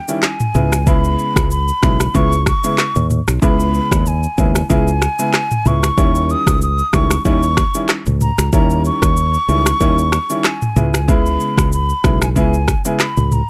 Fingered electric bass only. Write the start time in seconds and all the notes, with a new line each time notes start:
0.55 C#2
1.36 C#2
1.83 B1
2.15 C#2
2.96 D#2
3.28 B1
3.42 C#2
3.91 D#2
4.38 D#2
4.70 C#2
5.66 C#2
5.98 D#2
6.47 C#2
6.93 C#2
7.25 D#2
8.07 C#2
8.38 C#2
8.53 D#2
9.02 D#2
9.48 C#2
9.81 D#2
10.76 C#2
11.58 C#2
12.04 B1
12.36 C#2
13.17 C#2